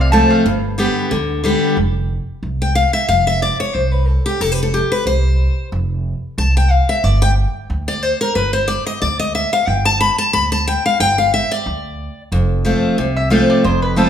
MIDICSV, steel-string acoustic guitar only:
0, 0, Header, 1, 2, 480
1, 0, Start_track
1, 0, Tempo, 329670
1, 668, Time_signature, 4, 2, 24, 8
1, 20521, End_track
2, 0, Start_track
2, 0, Title_t, "Steel-string acoustic guitar"
2, 0, Program_c, 0, 25
2, 0, Note_on_c, 0, 48, 90
2, 176, Note_on_c, 0, 53, 86
2, 189, Note_on_c, 0, 57, 103
2, 194, Note_on_c, 0, 60, 92
2, 198, Note_on_c, 0, 65, 107
2, 627, Note_off_c, 0, 48, 0
2, 639, Note_off_c, 0, 53, 0
2, 646, Note_off_c, 0, 57, 0
2, 649, Note_off_c, 0, 60, 0
2, 650, Note_off_c, 0, 65, 0
2, 665, Note_on_c, 0, 43, 93
2, 1133, Note_on_c, 0, 50, 92
2, 1142, Note_on_c, 0, 55, 99
2, 1151, Note_on_c, 0, 59, 100
2, 1159, Note_on_c, 0, 67, 109
2, 1580, Note_off_c, 0, 43, 0
2, 1597, Note_off_c, 0, 50, 0
2, 1601, Note_off_c, 0, 55, 0
2, 1606, Note_off_c, 0, 59, 0
2, 1610, Note_off_c, 0, 67, 0
2, 1616, Note_on_c, 0, 50, 98
2, 2073, Note_off_c, 0, 50, 0
2, 2091, Note_on_c, 0, 50, 92
2, 2106, Note_on_c, 0, 55, 104
2, 2109, Note_on_c, 0, 59, 93
2, 2120, Note_on_c, 0, 67, 98
2, 2555, Note_off_c, 0, 50, 0
2, 2562, Note_off_c, 0, 55, 0
2, 2564, Note_off_c, 0, 59, 0
2, 2569, Note_off_c, 0, 67, 0
2, 3810, Note_on_c, 0, 79, 89
2, 4003, Note_off_c, 0, 79, 0
2, 4009, Note_on_c, 0, 77, 98
2, 4264, Note_off_c, 0, 77, 0
2, 4270, Note_on_c, 0, 76, 100
2, 4485, Note_off_c, 0, 76, 0
2, 4491, Note_on_c, 0, 77, 106
2, 4750, Note_off_c, 0, 77, 0
2, 4761, Note_on_c, 0, 76, 101
2, 4972, Note_off_c, 0, 76, 0
2, 4982, Note_on_c, 0, 74, 87
2, 5234, Note_off_c, 0, 74, 0
2, 5240, Note_on_c, 0, 73, 89
2, 5451, Note_off_c, 0, 73, 0
2, 5451, Note_on_c, 0, 72, 90
2, 5716, Note_off_c, 0, 72, 0
2, 5716, Note_on_c, 0, 71, 84
2, 5937, Note_off_c, 0, 71, 0
2, 5937, Note_on_c, 0, 69, 86
2, 6193, Note_off_c, 0, 69, 0
2, 6198, Note_on_c, 0, 67, 91
2, 6421, Note_off_c, 0, 67, 0
2, 6421, Note_on_c, 0, 69, 87
2, 6574, Note_off_c, 0, 69, 0
2, 6574, Note_on_c, 0, 71, 93
2, 6730, Note_off_c, 0, 71, 0
2, 6735, Note_on_c, 0, 69, 85
2, 6891, Note_off_c, 0, 69, 0
2, 6898, Note_on_c, 0, 67, 89
2, 7153, Note_off_c, 0, 67, 0
2, 7158, Note_on_c, 0, 71, 96
2, 7369, Note_off_c, 0, 71, 0
2, 7377, Note_on_c, 0, 72, 93
2, 8277, Note_off_c, 0, 72, 0
2, 9293, Note_on_c, 0, 81, 94
2, 9549, Note_off_c, 0, 81, 0
2, 9563, Note_on_c, 0, 79, 100
2, 9765, Note_off_c, 0, 79, 0
2, 9765, Note_on_c, 0, 77, 95
2, 10025, Note_off_c, 0, 77, 0
2, 10032, Note_on_c, 0, 76, 95
2, 10247, Note_off_c, 0, 76, 0
2, 10247, Note_on_c, 0, 74, 87
2, 10505, Note_off_c, 0, 74, 0
2, 10511, Note_on_c, 0, 79, 110
2, 10642, Note_off_c, 0, 79, 0
2, 11471, Note_on_c, 0, 74, 92
2, 11685, Note_off_c, 0, 74, 0
2, 11685, Note_on_c, 0, 72, 94
2, 11944, Note_off_c, 0, 72, 0
2, 11951, Note_on_c, 0, 70, 102
2, 12155, Note_off_c, 0, 70, 0
2, 12161, Note_on_c, 0, 71, 87
2, 12414, Note_off_c, 0, 71, 0
2, 12420, Note_on_c, 0, 72, 93
2, 12633, Note_on_c, 0, 74, 97
2, 12637, Note_off_c, 0, 72, 0
2, 12897, Note_off_c, 0, 74, 0
2, 12908, Note_on_c, 0, 75, 109
2, 13121, Note_off_c, 0, 75, 0
2, 13127, Note_on_c, 0, 74, 94
2, 13381, Note_off_c, 0, 74, 0
2, 13386, Note_on_c, 0, 75, 105
2, 13601, Note_off_c, 0, 75, 0
2, 13611, Note_on_c, 0, 76, 95
2, 13866, Note_off_c, 0, 76, 0
2, 13873, Note_on_c, 0, 77, 101
2, 14093, Note_off_c, 0, 77, 0
2, 14093, Note_on_c, 0, 79, 101
2, 14341, Note_off_c, 0, 79, 0
2, 14347, Note_on_c, 0, 81, 112
2, 14561, Note_off_c, 0, 81, 0
2, 14567, Note_on_c, 0, 83, 118
2, 14822, Note_off_c, 0, 83, 0
2, 14828, Note_on_c, 0, 81, 113
2, 15039, Note_off_c, 0, 81, 0
2, 15045, Note_on_c, 0, 83, 117
2, 15304, Note_off_c, 0, 83, 0
2, 15315, Note_on_c, 0, 81, 101
2, 15526, Note_off_c, 0, 81, 0
2, 15543, Note_on_c, 0, 79, 98
2, 15794, Note_off_c, 0, 79, 0
2, 15806, Note_on_c, 0, 77, 106
2, 16012, Note_off_c, 0, 77, 0
2, 16021, Note_on_c, 0, 79, 116
2, 16273, Note_off_c, 0, 79, 0
2, 16281, Note_on_c, 0, 77, 101
2, 16490, Note_off_c, 0, 77, 0
2, 16506, Note_on_c, 0, 76, 101
2, 16756, Note_off_c, 0, 76, 0
2, 16765, Note_on_c, 0, 74, 101
2, 17774, Note_off_c, 0, 74, 0
2, 17941, Note_on_c, 0, 41, 86
2, 18412, Note_on_c, 0, 53, 82
2, 18420, Note_on_c, 0, 57, 85
2, 18432, Note_on_c, 0, 60, 84
2, 18436, Note_on_c, 0, 65, 95
2, 18860, Note_off_c, 0, 41, 0
2, 18876, Note_off_c, 0, 53, 0
2, 18880, Note_off_c, 0, 57, 0
2, 18886, Note_off_c, 0, 60, 0
2, 18888, Note_off_c, 0, 65, 0
2, 18900, Note_on_c, 0, 48, 90
2, 19370, Note_on_c, 0, 53, 93
2, 19380, Note_on_c, 0, 57, 90
2, 19388, Note_on_c, 0, 60, 93
2, 19394, Note_on_c, 0, 65, 94
2, 19822, Note_off_c, 0, 48, 0
2, 19837, Note_off_c, 0, 53, 0
2, 19842, Note_off_c, 0, 57, 0
2, 19846, Note_off_c, 0, 60, 0
2, 19850, Note_off_c, 0, 65, 0
2, 19866, Note_on_c, 0, 41, 90
2, 20331, Note_on_c, 0, 53, 88
2, 20340, Note_on_c, 0, 57, 82
2, 20349, Note_on_c, 0, 60, 101
2, 20355, Note_on_c, 0, 65, 89
2, 20521, Note_off_c, 0, 41, 0
2, 20521, Note_off_c, 0, 53, 0
2, 20521, Note_off_c, 0, 57, 0
2, 20521, Note_off_c, 0, 60, 0
2, 20521, Note_off_c, 0, 65, 0
2, 20521, End_track
0, 0, End_of_file